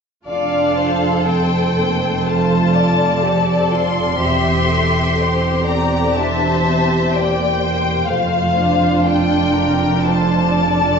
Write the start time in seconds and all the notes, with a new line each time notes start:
0.26 F1 F2 D4 F4 A4 D5 F5
0.76 C5
1.25 C4 A4 C5 G5
1.77 A#3
2.24 A3 F4 A4 C5 A5
2.73 D5
3.21 C4 G4 A4
3.70 F4 C6
4.18 E1 E2 G4 E5
4.68 A4
5.15 C4 A4 C5
5.65 D5 A#5
6.14 D4 G4 C5 E5 A5
6.65 C4
7.12 A#3 D5 G5
7.63 C5
8.07 A3 F4 C5 F5
8.11 F1 F2
8.58 D4
9.04 A4 G5
9.52 A#4
10.02 F4 A4 C5 A5
10.49 D5